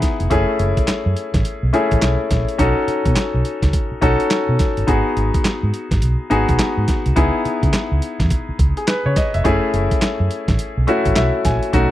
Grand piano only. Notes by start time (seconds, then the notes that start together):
Already playing: B3 D#4 E4 G#4
0.30 A3 C#4 E4 G#4
1.73 A3 C#4 E4 G#4
2.58 C#4 D#4 F#4 A4
4.01 C#4 D#4 F#4 A4
4.87 B3 D#4 F#4 G#4
6.30 B3 D#4 F#4 G#4
7.16 B3 D#4 E4 G#4
8.77 G#4
8.88 B4
9.06 C#5
9.16 D#5
9.34 E5
9.44 A3 C#4 E4 G#4
10.87 A3 C#4 E4 F#4
11.16 E5
11.45 G#5
11.73 A3 C#4 D#4 F#4